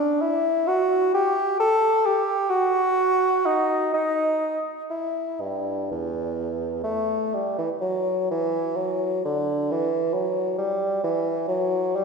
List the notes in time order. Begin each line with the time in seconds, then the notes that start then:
Already playing: D4
0.21 E4
0.67 F#4
1.14 G4
1.60 A4
2.06 G4
2.49 F#4
3.45 D#4
3.94 D#4
4.90 E4
5.41 G2
5.91 E2
6.83 A3
7.34 G3
7.58 E3
7.81 F#3
8.31 E3
8.76 F#3
9.25 D3
9.71 E3
10.14 F#3
10.58 G3
11.03 E3
11.48 F#3
11.95 G3